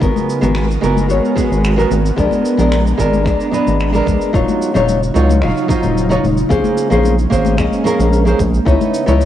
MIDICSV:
0, 0, Header, 1, 5, 480
1, 0, Start_track
1, 0, Tempo, 540541
1, 15, Time_signature, 4, 2, 24, 8
1, 8215, End_track
2, 0, Start_track
2, 0, Title_t, "Nylon-string guitar"
2, 0, Program_c, 0, 24
2, 1, Note_on_c, 0, 56, 83
2, 6, Note_on_c, 0, 59, 74
2, 14, Note_on_c, 0, 66, 77
2, 22, Note_on_c, 0, 70, 91
2, 342, Note_off_c, 0, 56, 0
2, 345, Note_off_c, 0, 59, 0
2, 349, Note_off_c, 0, 66, 0
2, 353, Note_off_c, 0, 70, 0
2, 364, Note_on_c, 0, 56, 83
2, 370, Note_on_c, 0, 59, 79
2, 378, Note_on_c, 0, 66, 77
2, 385, Note_on_c, 0, 70, 94
2, 576, Note_off_c, 0, 56, 0
2, 579, Note_off_c, 0, 59, 0
2, 583, Note_off_c, 0, 66, 0
2, 587, Note_off_c, 0, 70, 0
2, 719, Note_on_c, 0, 56, 93
2, 728, Note_on_c, 0, 59, 91
2, 734, Note_on_c, 0, 66, 86
2, 741, Note_on_c, 0, 70, 112
2, 939, Note_off_c, 0, 56, 0
2, 944, Note_off_c, 0, 59, 0
2, 947, Note_off_c, 0, 66, 0
2, 950, Note_off_c, 0, 70, 0
2, 961, Note_on_c, 0, 56, 69
2, 969, Note_on_c, 0, 59, 61
2, 974, Note_on_c, 0, 66, 66
2, 982, Note_on_c, 0, 73, 76
2, 1180, Note_off_c, 0, 56, 0
2, 1184, Note_off_c, 0, 59, 0
2, 1187, Note_off_c, 0, 66, 0
2, 1191, Note_off_c, 0, 73, 0
2, 1202, Note_on_c, 0, 56, 94
2, 1210, Note_on_c, 0, 59, 82
2, 1216, Note_on_c, 0, 66, 85
2, 1222, Note_on_c, 0, 68, 94
2, 1543, Note_off_c, 0, 56, 0
2, 1547, Note_off_c, 0, 59, 0
2, 1550, Note_off_c, 0, 66, 0
2, 1553, Note_off_c, 0, 68, 0
2, 1564, Note_on_c, 0, 56, 92
2, 1571, Note_on_c, 0, 59, 82
2, 1578, Note_on_c, 0, 66, 87
2, 1584, Note_on_c, 0, 70, 96
2, 1696, Note_off_c, 0, 56, 0
2, 1700, Note_off_c, 0, 59, 0
2, 1704, Note_off_c, 0, 66, 0
2, 1707, Note_off_c, 0, 70, 0
2, 1922, Note_on_c, 0, 56, 84
2, 1929, Note_on_c, 0, 59, 78
2, 1937, Note_on_c, 0, 62, 75
2, 1944, Note_on_c, 0, 70, 89
2, 2263, Note_off_c, 0, 56, 0
2, 2266, Note_off_c, 0, 59, 0
2, 2270, Note_off_c, 0, 62, 0
2, 2274, Note_off_c, 0, 70, 0
2, 2286, Note_on_c, 0, 56, 87
2, 2294, Note_on_c, 0, 59, 77
2, 2300, Note_on_c, 0, 62, 85
2, 2307, Note_on_c, 0, 70, 100
2, 2497, Note_off_c, 0, 56, 0
2, 2501, Note_off_c, 0, 59, 0
2, 2504, Note_off_c, 0, 62, 0
2, 2507, Note_off_c, 0, 70, 0
2, 2642, Note_on_c, 0, 56, 93
2, 2649, Note_on_c, 0, 59, 90
2, 2655, Note_on_c, 0, 62, 88
2, 2663, Note_on_c, 0, 70, 108
2, 2861, Note_off_c, 0, 56, 0
2, 2864, Note_off_c, 0, 59, 0
2, 2867, Note_off_c, 0, 62, 0
2, 2872, Note_off_c, 0, 70, 0
2, 2882, Note_on_c, 0, 56, 69
2, 2889, Note_on_c, 0, 59, 67
2, 2895, Note_on_c, 0, 62, 70
2, 2903, Note_on_c, 0, 74, 77
2, 3101, Note_off_c, 0, 56, 0
2, 3104, Note_off_c, 0, 59, 0
2, 3107, Note_off_c, 0, 62, 0
2, 3112, Note_off_c, 0, 74, 0
2, 3121, Note_on_c, 0, 56, 80
2, 3128, Note_on_c, 0, 59, 70
2, 3135, Note_on_c, 0, 62, 75
2, 3142, Note_on_c, 0, 71, 89
2, 3462, Note_off_c, 0, 56, 0
2, 3466, Note_off_c, 0, 59, 0
2, 3469, Note_off_c, 0, 62, 0
2, 3473, Note_off_c, 0, 71, 0
2, 3484, Note_on_c, 0, 56, 85
2, 3492, Note_on_c, 0, 59, 79
2, 3499, Note_on_c, 0, 62, 81
2, 3506, Note_on_c, 0, 70, 96
2, 3820, Note_off_c, 0, 56, 0
2, 3824, Note_off_c, 0, 59, 0
2, 3827, Note_off_c, 0, 62, 0
2, 3831, Note_off_c, 0, 70, 0
2, 3843, Note_on_c, 0, 54, 81
2, 3850, Note_on_c, 0, 63, 77
2, 3857, Note_on_c, 0, 65, 78
2, 3864, Note_on_c, 0, 73, 94
2, 4183, Note_off_c, 0, 54, 0
2, 4187, Note_off_c, 0, 63, 0
2, 4190, Note_off_c, 0, 65, 0
2, 4194, Note_off_c, 0, 73, 0
2, 4209, Note_on_c, 0, 54, 88
2, 4216, Note_on_c, 0, 63, 80
2, 4223, Note_on_c, 0, 65, 85
2, 4230, Note_on_c, 0, 73, 100
2, 4419, Note_off_c, 0, 54, 0
2, 4422, Note_off_c, 0, 63, 0
2, 4426, Note_off_c, 0, 65, 0
2, 4429, Note_off_c, 0, 73, 0
2, 4564, Note_on_c, 0, 54, 90
2, 4572, Note_on_c, 0, 63, 88
2, 4579, Note_on_c, 0, 65, 86
2, 4586, Note_on_c, 0, 73, 105
2, 4782, Note_off_c, 0, 54, 0
2, 4786, Note_off_c, 0, 63, 0
2, 4789, Note_off_c, 0, 65, 0
2, 4793, Note_off_c, 0, 73, 0
2, 4806, Note_on_c, 0, 54, 75
2, 4811, Note_on_c, 0, 63, 71
2, 4819, Note_on_c, 0, 65, 68
2, 4826, Note_on_c, 0, 77, 80
2, 5023, Note_off_c, 0, 54, 0
2, 5025, Note_off_c, 0, 63, 0
2, 5029, Note_off_c, 0, 65, 0
2, 5033, Note_off_c, 0, 77, 0
2, 5045, Note_on_c, 0, 54, 97
2, 5052, Note_on_c, 0, 63, 83
2, 5059, Note_on_c, 0, 65, 85
2, 5067, Note_on_c, 0, 72, 99
2, 5384, Note_off_c, 0, 54, 0
2, 5388, Note_off_c, 0, 63, 0
2, 5391, Note_off_c, 0, 65, 0
2, 5395, Note_off_c, 0, 72, 0
2, 5409, Note_on_c, 0, 54, 92
2, 5417, Note_on_c, 0, 63, 88
2, 5422, Note_on_c, 0, 65, 87
2, 5429, Note_on_c, 0, 73, 96
2, 5539, Note_off_c, 0, 54, 0
2, 5543, Note_off_c, 0, 63, 0
2, 5545, Note_off_c, 0, 65, 0
2, 5549, Note_off_c, 0, 73, 0
2, 5763, Note_on_c, 0, 58, 85
2, 5771, Note_on_c, 0, 61, 80
2, 5778, Note_on_c, 0, 68, 82
2, 5785, Note_on_c, 0, 72, 94
2, 6103, Note_off_c, 0, 58, 0
2, 6107, Note_off_c, 0, 61, 0
2, 6111, Note_off_c, 0, 68, 0
2, 6114, Note_off_c, 0, 72, 0
2, 6128, Note_on_c, 0, 58, 92
2, 6134, Note_on_c, 0, 61, 83
2, 6141, Note_on_c, 0, 68, 79
2, 6149, Note_on_c, 0, 72, 98
2, 6338, Note_off_c, 0, 58, 0
2, 6341, Note_off_c, 0, 61, 0
2, 6345, Note_off_c, 0, 68, 0
2, 6348, Note_off_c, 0, 72, 0
2, 6483, Note_on_c, 0, 58, 96
2, 6490, Note_on_c, 0, 61, 91
2, 6497, Note_on_c, 0, 68, 86
2, 6503, Note_on_c, 0, 72, 107
2, 6701, Note_off_c, 0, 58, 0
2, 6705, Note_off_c, 0, 61, 0
2, 6708, Note_off_c, 0, 68, 0
2, 6711, Note_off_c, 0, 72, 0
2, 6724, Note_on_c, 0, 58, 74
2, 6731, Note_on_c, 0, 61, 69
2, 6737, Note_on_c, 0, 68, 70
2, 6744, Note_on_c, 0, 75, 76
2, 6942, Note_off_c, 0, 58, 0
2, 6945, Note_off_c, 0, 61, 0
2, 6948, Note_off_c, 0, 68, 0
2, 6952, Note_off_c, 0, 75, 0
2, 6962, Note_on_c, 0, 58, 90
2, 6971, Note_on_c, 0, 61, 84
2, 6977, Note_on_c, 0, 68, 88
2, 6984, Note_on_c, 0, 70, 104
2, 7303, Note_off_c, 0, 58, 0
2, 7307, Note_off_c, 0, 61, 0
2, 7310, Note_off_c, 0, 68, 0
2, 7314, Note_off_c, 0, 70, 0
2, 7327, Note_on_c, 0, 58, 90
2, 7334, Note_on_c, 0, 61, 84
2, 7341, Note_on_c, 0, 68, 86
2, 7349, Note_on_c, 0, 72, 106
2, 7458, Note_off_c, 0, 58, 0
2, 7461, Note_off_c, 0, 61, 0
2, 7465, Note_off_c, 0, 68, 0
2, 7469, Note_off_c, 0, 72, 0
2, 7684, Note_on_c, 0, 59, 91
2, 7691, Note_on_c, 0, 63, 77
2, 7697, Note_on_c, 0, 64, 77
2, 7705, Note_on_c, 0, 73, 91
2, 8024, Note_off_c, 0, 59, 0
2, 8027, Note_off_c, 0, 63, 0
2, 8030, Note_off_c, 0, 64, 0
2, 8034, Note_off_c, 0, 73, 0
2, 8047, Note_on_c, 0, 59, 92
2, 8054, Note_on_c, 0, 63, 85
2, 8061, Note_on_c, 0, 64, 83
2, 8067, Note_on_c, 0, 73, 106
2, 8215, Note_off_c, 0, 59, 0
2, 8215, Note_off_c, 0, 63, 0
2, 8215, Note_off_c, 0, 64, 0
2, 8215, Note_off_c, 0, 73, 0
2, 8215, End_track
3, 0, Start_track
3, 0, Title_t, "Ambient pad"
3, 0, Program_c, 1, 92
3, 9, Note_on_c, 1, 59, 81
3, 9, Note_on_c, 1, 66, 76
3, 10, Note_on_c, 1, 56, 73
3, 11, Note_on_c, 1, 70, 93
3, 1913, Note_off_c, 1, 66, 0
3, 1914, Note_off_c, 1, 70, 0
3, 1936, Note_on_c, 1, 82, 88
3, 1937, Note_on_c, 1, 62, 78
3, 3817, Note_off_c, 1, 56, 0
3, 3817, Note_off_c, 1, 59, 0
3, 3836, Note_off_c, 1, 82, 0
3, 3837, Note_off_c, 1, 62, 0
3, 3857, Note_on_c, 1, 54, 75
3, 3857, Note_on_c, 1, 63, 77
3, 3858, Note_on_c, 1, 49, 79
3, 3860, Note_on_c, 1, 65, 88
3, 5757, Note_off_c, 1, 49, 0
3, 5757, Note_off_c, 1, 54, 0
3, 5757, Note_off_c, 1, 63, 0
3, 5758, Note_off_c, 1, 65, 0
3, 5778, Note_on_c, 1, 58, 76
3, 5780, Note_on_c, 1, 56, 76
3, 5780, Note_on_c, 1, 61, 87
3, 7678, Note_off_c, 1, 58, 0
3, 7678, Note_off_c, 1, 61, 0
3, 7679, Note_off_c, 1, 56, 0
3, 7690, Note_on_c, 1, 49, 81
3, 7692, Note_on_c, 1, 59, 70
3, 7693, Note_on_c, 1, 52, 77
3, 7693, Note_on_c, 1, 75, 90
3, 8215, Note_off_c, 1, 49, 0
3, 8215, Note_off_c, 1, 52, 0
3, 8215, Note_off_c, 1, 59, 0
3, 8215, Note_off_c, 1, 75, 0
3, 8215, End_track
4, 0, Start_track
4, 0, Title_t, "Analog synth bass"
4, 0, Program_c, 2, 38
4, 15, Note_on_c, 2, 32, 95
4, 108, Note_off_c, 2, 32, 0
4, 377, Note_on_c, 2, 32, 87
4, 688, Note_off_c, 2, 32, 0
4, 735, Note_on_c, 2, 30, 94
4, 976, Note_on_c, 2, 32, 89
4, 989, Note_off_c, 2, 30, 0
4, 1069, Note_off_c, 2, 32, 0
4, 1341, Note_on_c, 2, 32, 82
4, 1650, Note_off_c, 2, 32, 0
4, 1694, Note_on_c, 2, 32, 100
4, 1877, Note_off_c, 2, 32, 0
4, 1935, Note_on_c, 2, 34, 95
4, 2028, Note_off_c, 2, 34, 0
4, 2297, Note_on_c, 2, 34, 86
4, 2608, Note_off_c, 2, 34, 0
4, 2656, Note_on_c, 2, 32, 92
4, 2895, Note_on_c, 2, 34, 90
4, 2908, Note_off_c, 2, 32, 0
4, 2988, Note_off_c, 2, 34, 0
4, 3259, Note_on_c, 2, 32, 84
4, 3569, Note_off_c, 2, 32, 0
4, 3615, Note_on_c, 2, 34, 93
4, 3708, Note_off_c, 2, 34, 0
4, 3855, Note_on_c, 2, 27, 92
4, 3948, Note_off_c, 2, 27, 0
4, 4220, Note_on_c, 2, 27, 88
4, 4529, Note_off_c, 2, 27, 0
4, 4577, Note_on_c, 2, 37, 104
4, 4818, Note_on_c, 2, 27, 88
4, 4831, Note_off_c, 2, 37, 0
4, 4910, Note_off_c, 2, 27, 0
4, 5179, Note_on_c, 2, 27, 84
4, 5489, Note_off_c, 2, 27, 0
4, 5538, Note_on_c, 2, 27, 106
4, 5719, Note_off_c, 2, 27, 0
4, 5774, Note_on_c, 2, 34, 94
4, 5868, Note_off_c, 2, 34, 0
4, 6140, Note_on_c, 2, 34, 91
4, 6450, Note_off_c, 2, 34, 0
4, 6495, Note_on_c, 2, 32, 98
4, 6735, Note_on_c, 2, 34, 89
4, 6749, Note_off_c, 2, 32, 0
4, 6828, Note_off_c, 2, 34, 0
4, 7100, Note_on_c, 2, 34, 84
4, 7409, Note_off_c, 2, 34, 0
4, 7455, Note_on_c, 2, 34, 102
4, 7637, Note_off_c, 2, 34, 0
4, 7696, Note_on_c, 2, 37, 101
4, 7789, Note_off_c, 2, 37, 0
4, 8061, Note_on_c, 2, 37, 90
4, 8215, Note_off_c, 2, 37, 0
4, 8215, End_track
5, 0, Start_track
5, 0, Title_t, "Drums"
5, 14, Note_on_c, 9, 36, 111
5, 20, Note_on_c, 9, 69, 51
5, 103, Note_off_c, 9, 36, 0
5, 109, Note_off_c, 9, 69, 0
5, 142, Note_on_c, 9, 63, 83
5, 150, Note_on_c, 9, 69, 36
5, 231, Note_off_c, 9, 63, 0
5, 238, Note_off_c, 9, 69, 0
5, 262, Note_on_c, 9, 69, 77
5, 351, Note_off_c, 9, 69, 0
5, 372, Note_on_c, 9, 64, 88
5, 380, Note_on_c, 9, 69, 49
5, 460, Note_off_c, 9, 64, 0
5, 469, Note_off_c, 9, 69, 0
5, 486, Note_on_c, 9, 26, 108
5, 496, Note_on_c, 9, 63, 61
5, 506, Note_on_c, 9, 69, 66
5, 575, Note_off_c, 9, 26, 0
5, 585, Note_off_c, 9, 63, 0
5, 595, Note_off_c, 9, 69, 0
5, 628, Note_on_c, 9, 69, 42
5, 717, Note_off_c, 9, 69, 0
5, 741, Note_on_c, 9, 69, 75
5, 830, Note_off_c, 9, 69, 0
5, 861, Note_on_c, 9, 63, 82
5, 865, Note_on_c, 9, 69, 50
5, 950, Note_off_c, 9, 63, 0
5, 954, Note_off_c, 9, 69, 0
5, 974, Note_on_c, 9, 69, 50
5, 1063, Note_off_c, 9, 69, 0
5, 1109, Note_on_c, 9, 69, 34
5, 1198, Note_off_c, 9, 69, 0
5, 1211, Note_on_c, 9, 64, 78
5, 1214, Note_on_c, 9, 36, 96
5, 1222, Note_on_c, 9, 69, 73
5, 1299, Note_off_c, 9, 64, 0
5, 1303, Note_off_c, 9, 36, 0
5, 1311, Note_off_c, 9, 69, 0
5, 1334, Note_on_c, 9, 63, 54
5, 1353, Note_on_c, 9, 69, 47
5, 1423, Note_off_c, 9, 63, 0
5, 1441, Note_off_c, 9, 69, 0
5, 1461, Note_on_c, 9, 69, 62
5, 1462, Note_on_c, 9, 26, 95
5, 1550, Note_off_c, 9, 69, 0
5, 1551, Note_off_c, 9, 26, 0
5, 1580, Note_on_c, 9, 64, 75
5, 1592, Note_on_c, 9, 69, 38
5, 1669, Note_off_c, 9, 64, 0
5, 1681, Note_off_c, 9, 69, 0
5, 1693, Note_on_c, 9, 63, 82
5, 1701, Note_on_c, 9, 69, 75
5, 1782, Note_off_c, 9, 63, 0
5, 1790, Note_off_c, 9, 69, 0
5, 1827, Note_on_c, 9, 69, 45
5, 1915, Note_off_c, 9, 69, 0
5, 1934, Note_on_c, 9, 36, 112
5, 1937, Note_on_c, 9, 69, 57
5, 2023, Note_off_c, 9, 36, 0
5, 2026, Note_off_c, 9, 69, 0
5, 2053, Note_on_c, 9, 63, 79
5, 2063, Note_on_c, 9, 69, 35
5, 2142, Note_off_c, 9, 63, 0
5, 2152, Note_off_c, 9, 69, 0
5, 2179, Note_on_c, 9, 69, 80
5, 2267, Note_off_c, 9, 69, 0
5, 2299, Note_on_c, 9, 64, 82
5, 2301, Note_on_c, 9, 69, 51
5, 2388, Note_off_c, 9, 64, 0
5, 2389, Note_off_c, 9, 69, 0
5, 2413, Note_on_c, 9, 63, 60
5, 2415, Note_on_c, 9, 26, 103
5, 2425, Note_on_c, 9, 69, 61
5, 2502, Note_off_c, 9, 63, 0
5, 2504, Note_off_c, 9, 26, 0
5, 2514, Note_off_c, 9, 69, 0
5, 2547, Note_on_c, 9, 69, 44
5, 2636, Note_off_c, 9, 69, 0
5, 2655, Note_on_c, 9, 36, 53
5, 2660, Note_on_c, 9, 69, 77
5, 2743, Note_off_c, 9, 36, 0
5, 2749, Note_off_c, 9, 69, 0
5, 2781, Note_on_c, 9, 63, 81
5, 2784, Note_on_c, 9, 69, 44
5, 2870, Note_off_c, 9, 63, 0
5, 2873, Note_off_c, 9, 69, 0
5, 2893, Note_on_c, 9, 26, 29
5, 2894, Note_on_c, 9, 36, 93
5, 2903, Note_on_c, 9, 69, 50
5, 2982, Note_off_c, 9, 26, 0
5, 2983, Note_off_c, 9, 36, 0
5, 2992, Note_off_c, 9, 69, 0
5, 3022, Note_on_c, 9, 69, 36
5, 3110, Note_off_c, 9, 69, 0
5, 3130, Note_on_c, 9, 64, 78
5, 3142, Note_on_c, 9, 69, 69
5, 3219, Note_off_c, 9, 64, 0
5, 3230, Note_off_c, 9, 69, 0
5, 3259, Note_on_c, 9, 63, 61
5, 3261, Note_on_c, 9, 69, 46
5, 3348, Note_off_c, 9, 63, 0
5, 3350, Note_off_c, 9, 69, 0
5, 3374, Note_on_c, 9, 69, 59
5, 3379, Note_on_c, 9, 26, 91
5, 3463, Note_off_c, 9, 69, 0
5, 3468, Note_off_c, 9, 26, 0
5, 3495, Note_on_c, 9, 64, 75
5, 3501, Note_on_c, 9, 69, 41
5, 3583, Note_off_c, 9, 64, 0
5, 3590, Note_off_c, 9, 69, 0
5, 3607, Note_on_c, 9, 63, 77
5, 3615, Note_on_c, 9, 36, 99
5, 3621, Note_on_c, 9, 69, 74
5, 3696, Note_off_c, 9, 63, 0
5, 3704, Note_off_c, 9, 36, 0
5, 3710, Note_off_c, 9, 69, 0
5, 3742, Note_on_c, 9, 69, 44
5, 3831, Note_off_c, 9, 69, 0
5, 3855, Note_on_c, 9, 36, 118
5, 3862, Note_on_c, 9, 69, 63
5, 3944, Note_off_c, 9, 36, 0
5, 3951, Note_off_c, 9, 69, 0
5, 3981, Note_on_c, 9, 63, 79
5, 3982, Note_on_c, 9, 69, 37
5, 4070, Note_off_c, 9, 63, 0
5, 4070, Note_off_c, 9, 69, 0
5, 4103, Note_on_c, 9, 69, 83
5, 4192, Note_off_c, 9, 69, 0
5, 4219, Note_on_c, 9, 64, 97
5, 4224, Note_on_c, 9, 69, 51
5, 4307, Note_off_c, 9, 64, 0
5, 4312, Note_off_c, 9, 69, 0
5, 4329, Note_on_c, 9, 63, 63
5, 4339, Note_on_c, 9, 69, 67
5, 4418, Note_off_c, 9, 63, 0
5, 4428, Note_off_c, 9, 69, 0
5, 4466, Note_on_c, 9, 69, 42
5, 4555, Note_off_c, 9, 69, 0
5, 4580, Note_on_c, 9, 69, 75
5, 4669, Note_off_c, 9, 69, 0
5, 4701, Note_on_c, 9, 63, 97
5, 4710, Note_on_c, 9, 69, 48
5, 4790, Note_off_c, 9, 63, 0
5, 4799, Note_off_c, 9, 69, 0
5, 4811, Note_on_c, 9, 26, 73
5, 4820, Note_on_c, 9, 69, 50
5, 4900, Note_off_c, 9, 26, 0
5, 4909, Note_off_c, 9, 69, 0
5, 4947, Note_on_c, 9, 69, 35
5, 5036, Note_off_c, 9, 69, 0
5, 5055, Note_on_c, 9, 36, 107
5, 5059, Note_on_c, 9, 64, 89
5, 5064, Note_on_c, 9, 69, 81
5, 5143, Note_off_c, 9, 36, 0
5, 5148, Note_off_c, 9, 64, 0
5, 5153, Note_off_c, 9, 69, 0
5, 5176, Note_on_c, 9, 69, 48
5, 5179, Note_on_c, 9, 63, 57
5, 5265, Note_off_c, 9, 69, 0
5, 5268, Note_off_c, 9, 63, 0
5, 5308, Note_on_c, 9, 69, 63
5, 5397, Note_off_c, 9, 69, 0
5, 5424, Note_on_c, 9, 64, 89
5, 5425, Note_on_c, 9, 69, 42
5, 5513, Note_off_c, 9, 64, 0
5, 5514, Note_off_c, 9, 69, 0
5, 5539, Note_on_c, 9, 63, 90
5, 5545, Note_on_c, 9, 69, 86
5, 5628, Note_off_c, 9, 63, 0
5, 5633, Note_off_c, 9, 69, 0
5, 5659, Note_on_c, 9, 69, 50
5, 5748, Note_off_c, 9, 69, 0
5, 5775, Note_on_c, 9, 36, 124
5, 5779, Note_on_c, 9, 69, 61
5, 5864, Note_off_c, 9, 36, 0
5, 5868, Note_off_c, 9, 69, 0
5, 5897, Note_on_c, 9, 63, 94
5, 5902, Note_on_c, 9, 69, 37
5, 5986, Note_off_c, 9, 63, 0
5, 5991, Note_off_c, 9, 69, 0
5, 6016, Note_on_c, 9, 69, 86
5, 6105, Note_off_c, 9, 69, 0
5, 6141, Note_on_c, 9, 69, 47
5, 6142, Note_on_c, 9, 64, 88
5, 6230, Note_off_c, 9, 69, 0
5, 6231, Note_off_c, 9, 64, 0
5, 6247, Note_on_c, 9, 63, 73
5, 6262, Note_on_c, 9, 69, 64
5, 6336, Note_off_c, 9, 63, 0
5, 6351, Note_off_c, 9, 69, 0
5, 6382, Note_on_c, 9, 69, 41
5, 6471, Note_off_c, 9, 69, 0
5, 6495, Note_on_c, 9, 36, 62
5, 6505, Note_on_c, 9, 69, 91
5, 6584, Note_off_c, 9, 36, 0
5, 6594, Note_off_c, 9, 69, 0
5, 6614, Note_on_c, 9, 63, 99
5, 6624, Note_on_c, 9, 69, 49
5, 6703, Note_off_c, 9, 63, 0
5, 6713, Note_off_c, 9, 69, 0
5, 6733, Note_on_c, 9, 26, 73
5, 6735, Note_on_c, 9, 36, 105
5, 6738, Note_on_c, 9, 69, 59
5, 6822, Note_off_c, 9, 26, 0
5, 6823, Note_off_c, 9, 36, 0
5, 6826, Note_off_c, 9, 69, 0
5, 6863, Note_on_c, 9, 69, 44
5, 6952, Note_off_c, 9, 69, 0
5, 6973, Note_on_c, 9, 64, 93
5, 6985, Note_on_c, 9, 69, 85
5, 7062, Note_off_c, 9, 64, 0
5, 7074, Note_off_c, 9, 69, 0
5, 7099, Note_on_c, 9, 63, 72
5, 7104, Note_on_c, 9, 69, 52
5, 7188, Note_off_c, 9, 63, 0
5, 7192, Note_off_c, 9, 69, 0
5, 7219, Note_on_c, 9, 69, 59
5, 7308, Note_off_c, 9, 69, 0
5, 7340, Note_on_c, 9, 64, 89
5, 7344, Note_on_c, 9, 69, 42
5, 7429, Note_off_c, 9, 64, 0
5, 7433, Note_off_c, 9, 69, 0
5, 7454, Note_on_c, 9, 36, 107
5, 7455, Note_on_c, 9, 63, 87
5, 7456, Note_on_c, 9, 69, 80
5, 7543, Note_off_c, 9, 36, 0
5, 7544, Note_off_c, 9, 63, 0
5, 7545, Note_off_c, 9, 69, 0
5, 7585, Note_on_c, 9, 69, 43
5, 7674, Note_off_c, 9, 69, 0
5, 7694, Note_on_c, 9, 36, 127
5, 7704, Note_on_c, 9, 69, 57
5, 7783, Note_off_c, 9, 36, 0
5, 7793, Note_off_c, 9, 69, 0
5, 7825, Note_on_c, 9, 63, 98
5, 7825, Note_on_c, 9, 69, 38
5, 7914, Note_off_c, 9, 63, 0
5, 7914, Note_off_c, 9, 69, 0
5, 7942, Note_on_c, 9, 69, 99
5, 8030, Note_off_c, 9, 69, 0
5, 8062, Note_on_c, 9, 64, 93
5, 8062, Note_on_c, 9, 69, 50
5, 8151, Note_off_c, 9, 64, 0
5, 8151, Note_off_c, 9, 69, 0
5, 8177, Note_on_c, 9, 63, 74
5, 8181, Note_on_c, 9, 69, 64
5, 8215, Note_off_c, 9, 63, 0
5, 8215, Note_off_c, 9, 69, 0
5, 8215, End_track
0, 0, End_of_file